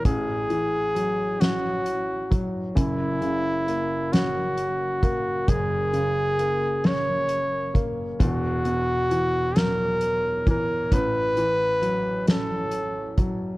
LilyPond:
<<
  \new Staff \with { instrumentName = "Flugelhorn" } { \time 6/8 \key fis \mixolydian \tempo 4. = 44 gis'4. fis'4 r8 | e'4. fis'4. | gis'4. cis''4 r8 | fis'4. ais'4 ais'8 |
b'4. a'4 r8 | }
  \new Staff \with { instrumentName = "Grand piano" } { \clef bass \time 6/8 \key fis \mixolydian <a,, a,>8 e8 fis8 cis'4 fis8 | <fis,, fis,>8 cis8 ais8 cis'4 ais8 | <fis,, fis,>8 cis8 ais8 cis'4 ais8 | <e,, e,>8 b,8 e8 fis4 e8 |
<a,, a,>8 e8 fis8 cis'4 fis8 | }
  \new DrumStaff \with { instrumentName = "Drums" } \drummode { \time 6/8 <hh bd>8 hh8 hh8 <hh sn>8 hh8 <hh bd>8 | <hh bd>8 hh8 hh8 <hh sn>8 hh8 <hh bd>8 | <hh bd>8 hh8 hh8 <hh sn>8 hh8 <hh bd>8 | <hh bd>8 hh8 hh8 <hh sn>8 hh8 <hh bd>8 |
<hh bd>8 hh8 hh8 <hh sn>8 hh8 <hh bd>8 | }
>>